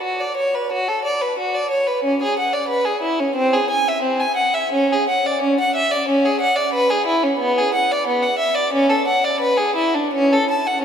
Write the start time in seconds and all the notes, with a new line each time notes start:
0.02 F#4
0.20 D5
0.36 C#5
0.55 B4
0.72 F#4
0.88 A4
1.04 D5
1.21 B4
1.38 F#4
1.55 D5
1.70 C#5
1.87 B4
2.03 C#4
2.22 G#4
2.39 F#5
2.53 D5
2.68 B4
2.85 G#4
3.02 E4
3.19 C#4
3.35 C4
3.53 G#4
3.70 G#5
3.88 E5
4.02 C4
4.20 G#5
4.36 F#5
4.54 E5
4.72 C#4
4.92 G#4
5.09 F#5
5.26 D5
5.42 C#4
5.60 F#5
5.75 E5
5.91 D5
6.08 C#4
6.25 G#4
6.40 F#5
6.56 D5
6.73 B4
6.90 G#4
7.07 E4
7.23 C#4
7.39 B3
7.58 G#4
7.74 F#5
7.92 D5
8.07 B3
8.23 F#5
8.39 E5
8.54 D5
8.73 C#4
8.89 A4
9.07 F#5
9.24 D5
9.40 B4
9.57 G#4
9.76 E4
9.94 D4
10.13 C#4
10.32 A4
10.50 A5
10.67 F#5